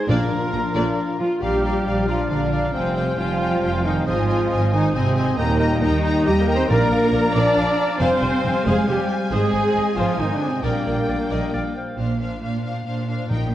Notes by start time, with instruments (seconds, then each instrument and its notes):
0.08 tuba A#1, double bass section A#1, cello section A#2, timpani A#2, french horn section F3 D4, viola section A#3 D4, clarinet D4, trumpet F4, violin section A#4 D5, cor anglais F5, flute A#5
0.52 tuba A#1, double bass section A#1, cello section A#2, viola section D4 F4, violin section A#5
0.75 tuba A#1, double bass section A#1, cello section A#2, viola section A#3 D4, violin section D5
1.19 cello section F3, trumpet F4, viola section F4
1.41 double bass section A#1, timpani A#2, french horn section F3 D4, cello section G3, viola section G4, trumpet G4, violin section D5 F5, clarinet D5, cor anglais F5, flute A#5
1.63 violin section D5 F5, clarinet D5, cor anglais F5, flute A#5
1.85 double bass section A#1, violin section D5 F5, clarinet D5, cor anglais F5, flute A#5
2.07 cello section F3, trumpet F4, viola section F4, violin section D5 F5, clarinet D5, cor anglais F5, flute A#5
2.29 double bass section A#1, cello section D3, viola section D4, trumpet D4, clarinet D5, violin section D5 F5, cor anglais F5, flute A#5
2.52 violin section D5 F5, clarinet D5, cor anglais F5, flute A#5
2.73 double bass section F1, cello section C3, french horn section G3 C4, viola section C4, trumpet C4, clarinet C5, violin section C5 F5 G5, cor anglais F5, flute G#5
2.95 clarinet C5, violin section C5 F5 G5, cor anglais F5, flute G#5
3.18 double bass section F1, cello section F3, trumpet F4, viola section F4, clarinet C5, violin section C5 F5 G5, cor anglais F5, flute G#5
3.41 clarinet C5, violin section C5 F5 G5, cor anglais F5, flute G#5
3.62 double bass section F1, clarinet C5, violin section C5 F5 G5, cor anglais F5, flute G#5
3.83 cello section D#3, trumpet D#4, viola section D#4, clarinet C5, violin section C5 F5 G5, cor anglais F5, flute G#5
4.05 double bass section G#1, cello section F3, french horn section G#3, trumpet F4, viola section F4, violin section C5 D#5 G#5, clarinet C5, cor anglais D#5, flute G#5
4.28 violin section C5 D#5 G#5, clarinet C5, cor anglais D#5, flute G#5
4.50 double bass section G#1, clarinet C5, violin section C5 D#5 G#5, cor anglais D#5, flute G#5
4.72 cello section D#3, trumpet D#4, viola section D#4, violin section C5 D#5 G#5, clarinet C5, cor anglais D#5, flute G#5
4.94 double bass section G#1, cello section C3, trumpet C4, viola section C4, clarinet C5, violin section C5 D#5 G#5, cor anglais D#5, flute G#5
5.15 violin section C5 D#5 G#5, clarinet C5, cor anglais D#5, flute G#5
5.37 double bass section D#2, cello section A#2, french horn section G3 D#4, viola section A#3, trumpet A#3, clarinet D#5, violin section D#5 G5 A#5, cor anglais G5, flute A#5
5.59 violin section D#5 G5 A#5, clarinet D#5, cor anglais G5, flute A#5
5.82 double bass section D#2, cello section D#3, trumpet D#4, viola section D#4, clarinet D#5, violin section D#5 G5 A#5, cor anglais G5, flute A#5
6.04 clarinet D#5, violin section D#5 G5 A#5, cor anglais G5, flute A#5
6.24 double bass section D#2, cello section G3, trumpet G4, viola section G4, clarinet D#5, violin section D#5 G5 A#5, cor anglais G5, flute A#5
6.40 cello section A#3, trumpet A#4, viola section A#4
6.48 clarinet D#5, violin section D#5 G5 A#5, cor anglais G5, flute A#5
6.55 cello section C4, trumpet C5, viola section C5
6.68 double bass section A#1, timpani A#2, french horn section F3 D4, cello section A#3, viola section A#4, trumpet A#4, violin section A#4 D5 A#5, clarinet D5, cor anglais F5, flute A#5
6.91 double bass section A#1, clarinet D5, violin section D5 F5, cor anglais F5, flute A#5
7.13 double bass section A#1, clarinet D5, violin section D5, cor anglais F5, flute A#5
7.34 double bass section A#1, cello section D4, violin section A#4 D5, clarinet D5, trumpet D5, viola section D5, cor anglais F5, flute A#5
7.57 double bass section A#1, clarinet D5, violin section D5 F5, cor anglais F5, flute A#5
7.79 clarinet D5, cor anglais F5, flute A#5
8.00 double bass section F1, french horn section G3 C4, cello section C4, trumpet C5, violin section C5 F5 G#5, viola section C5, clarinet C5, cor anglais F5, flute G#5
8.22 double bass section F1, violin section C5 G#5, clarinet C5, cor anglais F5, flute G#5
8.44 double bass section F1, clarinet C5, violin section C5 G5, cor anglais F5, flute G#5
8.65 double bass section F1, cello section G#3, viola section G#4, trumpet G#4, clarinet C5, violin section C5 F5, cor anglais F5, flute G#5
8.88 double bass section F1, cello section G3, trumpet G4, viola section G4, clarinet C5, violin section C5 G#5, cor anglais F5, flute G#5
9.10 clarinet C5, cor anglais F5, flute G#5
9.30 double bass section G#1, french horn section G#3 C4, cello section G#3, trumpet G#4, viola section G#4, clarinet C5, violin section C5, cor anglais D#5, flute G#5
9.53 double bass section G#1, clarinet C5, violin section C5 G#5, cor anglais D#5, flute G#5
9.74 double bass section G#1, clarinet C5, violin section C5 D#5, cor anglais D#5, flute G#5
9.97 double bass section G#1, cello section F3, trumpet F4, viola section F4, clarinet C5, violin section C5, cor anglais D#5, flute G#5
10.19 double bass section G#1, cello section D#3, french horn section G#3 C4, trumpet D#4, viola section D#4, clarinet C5, violin section C5 G#5, cor anglais D#5, flute G#5
10.34 cello section D3, trumpet D4, viola section D4
10.41 clarinet C5, cor anglais D#5, flute G#5
10.48 cello section C3, trumpet C4, viola section C4
10.63 double bass section A#1, cello section A#2, french horn section G3 D4, trumpet A#3, viola section A#3, violin section A#4 D5 G5, clarinet D5, cor anglais F5, flute G5
10.86 double bass section A#1, clarinet D5, violin section D5 F5, cor anglais F5, flute G5
11.08 double bass section A#1, violin section D5, clarinet D5, cor anglais F5, flute G5
11.30 double bass section A#1, violin section A#4 D5, clarinet D#5, cor anglais F5, flute G5
11.52 double bass section A#1, clarinet D5, violin section D5 F5, cor anglais F5, flute G5
11.75 clarinet C5, cor anglais F5, flute G5
11.98 double bass section A#1, cello section A#2, viola section D4, violin section C5 F5
12.20 viola section D4, violin section C5 F5
12.42 cello section A#2, viola section D4, violin section C5 F5
12.63 viola section D4, violin section C5 F5
12.86 cello section A#2, viola section D4, violin section C5 F5
13.08 viola section D4, violin section C5 F5
13.29 double bass section A#1, cello section A#2, timpani A#2, viola section D#4, violin section A#4 G5
13.51 violin section A#4